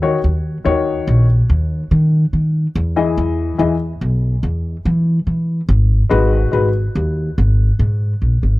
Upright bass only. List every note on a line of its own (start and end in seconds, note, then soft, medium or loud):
0.00 0.14 D#2 medium
0.24 0.56 D#2 medium
0.66 0.98 D#2 medium
1.07 1.40 A#1 medium
1.50 1.82 D#2 medium
1.91 2.24 D#3 medium
2.33 2.66 D#3 medium
2.75 3.08 E2 loud
3.18 3.50 E2 loud
3.59 3.92 E2 medium
4.01 4.34 B1 medium
4.43 4.75 E2 medium
4.85 5.18 E3 medium
5.27 5.59 E3 medium
5.69 6.01 G#1 loud
6.11 6.43 G#1 medium
6.53 6.85 G#1 medium
6.95 7.28 D#2 medium
7.38 7.70 G#1 medium
7.79 8.12 G#2 medium
8.22 8.40 A#1 medium
8.43 8.60 G#1 medium